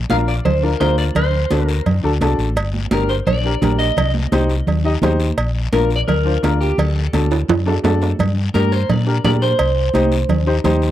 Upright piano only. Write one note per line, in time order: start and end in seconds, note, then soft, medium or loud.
0.10 0.29 D4 medium
0.10 0.29 F4 medium
0.10 0.29 A#4 medium
0.63 0.69 D4 medium
0.63 0.69 F4 medium
0.63 0.69 A#4 medium
0.80 1.05 D4 medium
0.80 1.05 F4 medium
0.80 1.05 A#4 medium
1.51 1.69 D4 medium
1.51 1.69 F#4 medium
1.51 1.70 A4 medium
2.03 2.10 D4 medium
2.03 2.10 F#4 medium
2.03 2.10 A4 medium
2.21 2.46 D4 medium
2.21 2.46 F#4 medium
2.21 2.46 A4 medium
2.91 3.10 D4 medium
2.91 3.10 G4 medium
2.91 3.10 A#4 medium
3.44 3.51 D4 medium
3.44 3.51 G4 medium
3.44 3.51 A#4 medium
3.61 3.86 D4 medium
3.61 3.86 G4 medium
3.61 3.87 A#4 medium
4.32 4.51 D#4 medium
4.32 4.51 G4 medium
4.32 4.51 C5 medium
4.84 4.91 D#4 medium
4.84 4.91 G4 medium
4.84 4.91 D#5 medium
5.02 5.27 D#4 medium
5.02 5.27 G4 medium
5.02 5.27 C5 loud
5.73 5.91 D4 medium
5.73 5.91 F4 medium
5.73 5.92 A#4 medium
6.25 6.32 D4 medium
6.25 6.32 F4 medium
6.25 6.32 C5 medium
6.42 6.67 D4 medium
6.42 6.68 F4 medium
6.42 6.68 A#4 medium
7.13 7.32 D4 medium
7.13 7.32 F#4 medium
7.13 7.32 A4 medium
7.66 7.72 D4 medium
7.66 7.73 F#4 medium
7.66 7.73 A4 medium
7.84 8.08 D4 medium
7.84 8.08 F#4 medium
7.84 8.09 A4 medium
8.54 8.73 D4 medium
8.54 8.73 G4 medium
8.54 8.73 A#4 medium
9.06 9.13 D4 medium
9.06 9.13 G4 medium
9.06 9.13 A#4 medium
9.24 9.49 D4 medium
9.24 9.49 G4 medium
9.24 9.49 A#4 medium
9.94 10.13 D#4 medium
9.94 10.13 G4 medium
9.94 10.13 C5 medium
10.47 10.53 D#4 medium
10.47 10.54 G4 medium
10.47 10.54 C5 medium
10.64 10.89 D#4 medium
10.64 10.89 G4 medium
10.64 10.90 C5 loud